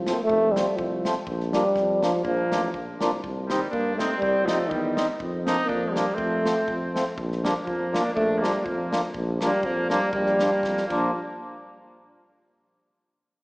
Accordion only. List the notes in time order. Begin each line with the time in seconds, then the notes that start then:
0.08 F3 A3 C4
0.56 F3 A3 C4
1.04 F3 A3 C4
1.54 F3 A#3 D4
2.02 F3 A#3 D4
2.51 F3 A#3 D4
3.00 F3 A#3 D4
3.50 G3 C4 D#4
4.00 G3 C4 D#4
4.47 G3 C4 D#4
4.96 G3 C4 D#4
5.47 F3 A#3 D4
5.96 F3 A#3 D4
6.44 F3 A3 C4
6.94 F3 A3 C4
7.44 F3 A#3 D4
7.92 F3 A#3 D4
8.41 F3 A#3 D4
8.91 F3 A#3 D4
9.41 F3 A#3 D4
9.90 F3 A#3 D4
10.41 F3 A#3 D4
10.91 F3 A#3 D4